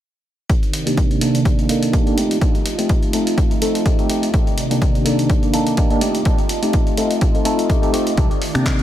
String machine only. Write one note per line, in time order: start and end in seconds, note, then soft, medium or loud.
0.50 2.16 C3 medium
0.50 2.16 D#3 medium
0.50 2.16 D5 medium
2.18 4.31 F4 medium
2.18 4.31 D#5 medium
2.18 4.32 A5 medium
4.34 6.00 C3 medium
4.34 6.00 D#3 medium
4.34 6.00 D5 medium
6.02 8.16 F4 medium
6.02 8.16 D#5 medium
6.02 8.16 A5 medium
8.18 8.83 D#3 medium
8.18 8.83 D5 medium